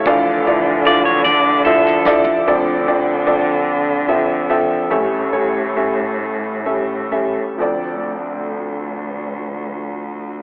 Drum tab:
HH |x-x-x-------|------------|------------|------------|
SD |---------oo-|------------|------------|------------|
T1 |------o-----|------------|------------|------------|
FT |-----------o|------------|------------|------------|
BD |o-----o-o---|------------|------------|------------|